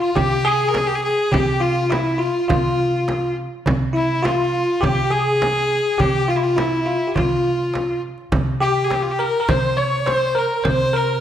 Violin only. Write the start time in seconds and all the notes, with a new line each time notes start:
0.03 F4
0.17 G4
0.47 G#4
0.68 A#4
0.77 G#4
0.87 G4
0.95 G#4
1.04 G#4
1.33 G4
1.62 F4
1.91 E4
2.21 F4
2.51 F4
3.96 E4
4.26 F4
4.84 G4
5.12 G#4
6.00 G4
6.30 F4
6.36 E4
6.44 F4
6.59 E4
7.16 F4
8.62 G4
8.84 G#4
8.94 G4
9.03 F4
9.11 G4
9.20 A#4
9.50 C5
9.78 C#5
10.07 C5
10.38 A#4
10.67 C5
10.96 A#4